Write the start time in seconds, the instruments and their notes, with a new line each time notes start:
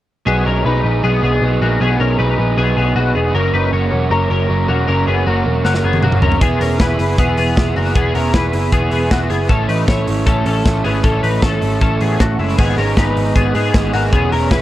0.26 picked electric bass B1, overdriven electric guitar B2 F#3 B3 D#4 G#4, clean electric guitar B3 G#4
0.46 picked electric bass B1, clean electric guitar C#4 A#4
0.65 picked electric bass B1, overdriven electric guitar F#3 B3 D#4 G#4, clean electric guitar D#4 B4
0.84 picked electric bass A#1, overdriven electric guitar B3 D#4 G#4
1.03 picked electric bass B1, overdriven electric guitar F#3 B3 D#4 G#4, clean electric guitar B3 G#4
1.23 picked electric bass B1, clean electric guitar B3 G#4
1.42 picked electric bass B1, overdriven electric guitar F#3 B3 D#4 G#4
1.61 picked electric bass A#1, clean electric guitar A#3 F#4, overdriven electric guitar B3 D#4 G#4
1.81 picked electric bass B1, overdriven electric guitar B2 F#3 B3 D#4 G#4, clean electric guitar B3 G#4
2.00 picked electric bass B1, clean electric guitar C#4 A#4
2.18 picked electric bass B1, overdriven electric guitar F#3 B3 D#4 G#4, clean electric guitar D#4 B4
2.38 picked electric bass A#1, overdriven electric guitar B3 D#4 G#4
2.57 picked electric bass B1, overdriven electric guitar F#3 B3 D#4 G#4, clean electric guitar B3 G#4
2.77 picked electric bass B1, clean electric guitar B3 G#4
2.96 picked electric bass B1, overdriven electric guitar F#3 B3 D#4 G#4, clean electric guitar B3 F#4
3.15 picked electric bass E1, clean electric guitar B3 G#4, overdriven electric guitar B3 D#4 G#4
3.34 picked electric bass F#1, overdriven electric guitar F#2 C#3 F#3 A#3 C#4 A#4, clean electric guitar C#4 A#4
3.53 picked electric bass F#1, clean electric guitar D#4 B4
3.72 picked electric bass F#1, overdriven electric guitar F#3 A#3 C#4 A#4, clean electric guitar F#4 C#5
3.91 picked electric bass E1, overdriven electric guitar F#3 A#3 C#4 A#4
4.11 picked electric bass F#1, overdriven electric guitar F#3 A#3 C#4 A#4, clean electric guitar C#4 A#4
4.30 picked electric bass F#1, clean electric guitar C#4 A#4
4.49 picked electric bass F#1, overdriven electric guitar F#3 A#3 C#4 A#4
4.69 picked electric bass E1, overdriven electric guitar F#3 A#3 C#4 A#4, clean electric guitar A#3 F#4
4.88 picked electric bass F#1, overdriven electric guitar F#2 C#3 F#3 A#3 C#4 A#4, clean electric guitar C#4 A#4
5.07 picked electric bass F#1, clean electric guitar B3 G#4
5.26 picked electric bass F#1, overdriven electric guitar F#3 A#3 C#4 A#4, clean electric guitar A#3 F#4
5.45 picked electric bass E1, overdriven electric guitar F#3 A#3 C#4 A#4
5.64 picked electric bass F#1, overdriven electric guitar F#3 A#3 C#4 A#4, clean electric guitar A#3 F#4, snare
5.74 snare
5.84 picked electric bass F#1, clean electric guitar B3 G#4
5.93 high tom
6.02 picked electric bass F#1, overdriven electric guitar F#3 A#3 C#4 A#4, clean electric guitar A#3 F#4, mid tom
6.12 mid tom
6.22 picked electric bass F#1, overdriven electric guitar F#3 A#3 C#4 A#4, clean electric guitar C#4 A#4, floor tom
6.32 floor tom
6.40 picked electric bass E1, overdriven electric guitar E3 B3 E4 G#4, clean electric guitar B3 G#4, kick, closed hi-hat
6.61 picked electric bass E1, clean electric guitar C#4 A#4, open hi-hat
6.78 picked electric bass E1, overdriven electric guitar E3 B3 E4 G#4, clean electric guitar E4 B4, kick, snare, closed hi-hat
6.98 picked electric bass F#1, overdriven electric guitar B3 E4 G#4, open hi-hat
7.17 picked electric bass E1, overdriven electric guitar E3 B3 E4 G#4, clean electric guitar B3 G#4, kick, closed hi-hat
7.37 picked electric bass E1, clean electric guitar B3 G#4, open hi-hat
7.56 picked electric bass E1, overdriven electric guitar E3 B3 E4 G#4, kick, snare, closed hi-hat
7.76 picked electric bass F#1, clean electric guitar A#3 F#4, overdriven electric guitar B3 E4 G#4, open hi-hat
7.94 picked electric bass E1, overdriven electric guitar E3 B3 E4 G#4, clean electric guitar B3 G#4, kick, closed hi-hat
8.14 picked electric bass E1, clean electric guitar C#4 A#4, open hi-hat
8.34 picked electric bass E1, overdriven electric guitar E3 B3 E4 G#4, clean electric guitar E4 B4, kick, snare, closed hi-hat
8.53 picked electric bass F#1, overdriven electric guitar B3 E4 G#4, open hi-hat
8.72 picked electric bass E1, overdriven electric guitar E3 B3 E4 G#4, clean electric guitar B3 G#4, kick, closed hi-hat
8.91 picked electric bass E1, clean electric guitar B3 G#4, open hi-hat
9.11 picked electric bass E1, overdriven electric guitar E3 B3 E4 G#4, clean electric guitar B3 F#4, kick, snare, closed hi-hat
9.30 picked electric bass F#1, clean electric guitar B3 G#4, overdriven electric guitar B3 E4 G#4, open hi-hat
9.49 picked electric bass A1, overdriven electric guitar A2 E3 A3 C#4 E4 A4, clean electric guitar C#4 A4, kick, closed hi-hat
9.69 picked electric bass A1, clean electric guitar D#4 B4, open hi-hat
9.87 picked electric bass A1, overdriven electric guitar A3 C#4 E4 A4, clean electric guitar E4 C#5, kick, snare, closed hi-hat
10.07 picked electric bass G#1, overdriven electric guitar A3 C#4 E4 A4, open hi-hat
10.26 picked electric bass A1, overdriven electric guitar A3 C#4 E4 A4, clean electric guitar C#4 A4, kick, closed hi-hat
10.46 picked electric bass A1, clean electric guitar C#4 A4, open hi-hat
10.65 picked electric bass A1, overdriven electric guitar A3 C#4 E4 A4, kick, snare, closed hi-hat
10.84 picked electric bass G#1, overdriven electric guitar A3 C#4 E4 A4, clean electric guitar B3 G#4, open hi-hat
11.04 picked electric bass A1, overdriven electric guitar A2 E3 A3 C#4 E4 A4, clean electric guitar C#4 A4, kick, closed hi-hat
11.23 picked electric bass A1, clean electric guitar D#4 B4, open hi-hat
11.42 picked electric bass A1, overdriven electric guitar A3 C#4 E4 A4, clean electric guitar C#4 A4, kick, snare, closed hi-hat
11.62 picked electric bass G#1, overdriven electric guitar A3 C#4 E4 A4, open hi-hat
11.81 picked electric bass A1, overdriven electric guitar A3 C#4 E4 A4, clean electric guitar C#4 A4, kick, closed hi-hat
12.00 picked electric bass A1, clean electric guitar B3 G#4, open hi-hat
12.19 picked electric bass A1, overdriven electric guitar A3 C#4 E4 A4, clean electric guitar A3 F#4, kick, snare, closed hi-hat
12.39 picked electric bass F#1, clean electric guitar G#3 E4, overdriven electric guitar A3 C#4 E4 A4, open hi-hat
12.58 picked electric bass G#1, overdriven electric guitar G#2 D#3 G#3 B3 D#4 G#4, clean electric guitar B3 G#4, kick, crash
12.77 picked electric bass G#1, overdriven electric guitar G#3 B3 D#4 G#4, clean electric guitar C#4 A#4, open hi-hat
12.96 picked electric bass G#1, overdriven electric guitar G#3 B3 D#4 G#4, clean electric guitar D#4 B4, kick, snare, closed hi-hat
13.16 picked electric bass G#1, open hi-hat
13.35 picked electric bass G#1, clean electric guitar B3 G#4, kick, closed hi-hat
13.54 picked electric bass G#2, overdriven electric guitar G#3 B3 D#4 G#4, clean electric guitar B3 G#4, open hi-hat
13.74 picked electric bass G#1, overdriven electric guitar G#3 B3 D#4 G#4, kick, snare, closed hi-hat
13.93 picked electric bass G#1, overdriven electric guitar G#3 B3 D#4 G#4, clean electric guitar A#3 F#4, open hi-hat
14.13 picked electric bass E1, overdriven electric guitar E3 B3 C#4 G#4, clean electric guitar B3 G#4, kick, closed hi-hat
14.32 picked electric bass E1, overdriven electric guitar B3 C#4 G#4, clean electric guitar C#4 A#4, open hi-hat
14.51 overdriven electric guitar E3 B3 C#4 G#4, clean electric guitar E4 B4, kick, snare, closed hi-hat